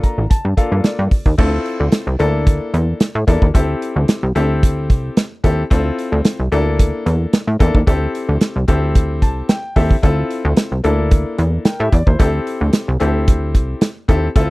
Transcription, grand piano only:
0.00 0.22 A#3 medium
0.00 0.22 D4 medium
0.00 0.22 F4 medium
0.00 0.22 A4 medium
0.00 0.28 A#5 medium
0.30 0.55 A5 medium
0.57 1.08 A#3 medium
0.57 1.08 D4 medium
0.57 1.08 F4 medium
0.57 1.08 A4 medium
0.57 0.82 F5 medium
0.84 1.35 D5 medium
1.38 2.06 C4 medium
1.38 2.06 E4 medium
1.38 2.06 F4 medium
1.38 2.06 A4 loud
2.19 3.06 A#3 medium
2.19 3.06 D4 medium
2.19 3.06 E4 medium
2.19 3.06 A4 loud
3.27 3.45 A#3 medium
3.27 3.45 D4 medium
3.27 3.45 E4 medium
3.27 3.45 A4 loud
3.54 4.22 C4 medium
3.54 4.22 E4 medium
3.54 4.23 G4 medium
3.54 4.23 A4 medium
4.35 5.22 C4 medium
4.35 5.22 E4 medium
4.35 5.23 G4 medium
4.35 5.23 A4 medium
5.44 5.61 C4 medium
5.44 5.61 E4 medium
5.44 5.61 G4 medium
5.44 5.61 A4 loud
5.70 6.39 C4 loud
5.70 6.39 E4 medium
5.70 6.39 F4 medium
5.70 6.39 A4 medium
6.52 7.39 A#3 loud
6.52 7.39 D4 medium
6.52 7.39 E4 medium
6.52 7.39 A4 loud
7.59 7.77 A#3 medium
7.59 7.77 D4 medium
7.59 7.77 E4 medium
7.59 7.78 A4 loud
7.87 8.55 C4 medium
7.87 8.55 E4 medium
7.87 8.55 G4 medium
7.87 8.55 A4 loud
8.68 9.55 C4 medium
8.68 9.55 E4 medium
8.68 9.55 G4 medium
8.68 9.55 A4 medium
9.22 9.47 A5 medium
9.49 9.74 G5 medium
9.76 9.93 C4 medium
9.76 9.94 E4 medium
9.76 9.94 G4 medium
9.76 9.94 A4 loud
9.76 10.01 E5 medium
10.02 10.71 C4 medium
10.02 10.71 E4 medium
10.02 10.71 F4 medium
10.02 10.71 A4 loud
10.84 11.71 A#3 medium
10.84 11.71 D4 medium
10.84 11.65 E4 medium
10.84 11.65 A4 medium
11.65 11.79 A#4 medium
11.65 11.79 G5 medium
11.80 11.92 G4 medium
11.80 11.92 E5 medium
11.92 12.06 D5 medium
12.07 12.18 E4 medium
12.07 12.32 C5 medium
12.19 12.87 C4 medium
12.19 12.87 E4 medium
12.19 12.88 G4 medium
12.19 12.88 A4 loud
13.00 13.87 C4 medium
13.00 13.87 E4 medium
13.00 13.87 G4 medium
13.00 13.87 A4 medium
14.08 14.26 C4 medium
14.08 14.26 E4 medium
14.08 14.26 G4 medium
14.08 14.26 A4 loud
14.35 14.50 C4 medium
14.35 14.50 E4 medium
14.35 14.50 F4 medium
14.35 14.50 A4 loud

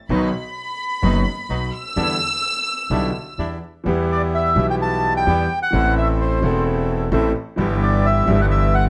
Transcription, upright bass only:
0.09 0.29 B1 medium
1.03 1.23 F#1 loud
1.49 1.69 B1 medium
1.96 2.16 E2 medium
2.90 3.10 B1 medium
3.38 3.58 E2 medium
3.86 4.53 E2 medium
4.56 5.23 B1 loud
5.27 5.46 E2 medium
5.73 6.39 A1 loud
6.42 7.09 E1 loud
7.12 7.31 A1 loud
7.58 8.24 G1 loud
8.27 8.89 G1 loud

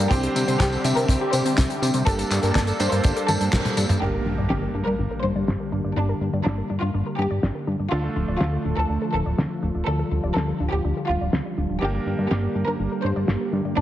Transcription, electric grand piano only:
0.11 0.82 C4 medium
0.11 0.82 D4 medium
0.11 0.82 G4 medium
0.11 0.82 C5 loud
0.85 2.04 C4 medium
0.85 2.04 D4 medium
0.85 2.04 G4 medium
0.85 2.04 E5 medium
2.07 2.77 A#3 medium
2.07 2.77 D4 medium
2.07 2.77 G4 medium
2.07 2.77 A4 medium
2.80 3.99 A#3 medium
2.80 3.99 D4 medium
2.80 3.99 G4 medium
2.80 3.99 C5 loud
4.02 7.89 A#3 medium
4.02 7.89 D4 medium
4.02 7.89 G4 medium
4.02 7.89 A#4 medium
7.92 11.79 A3 medium
7.92 11.79 D4 medium
7.92 11.79 F4 medium
7.92 11.79 A4 medium
11.82 13.81 A#3 medium
11.82 13.81 D4 medium
11.82 13.81 G4 medium
11.82 13.81 A#4 medium

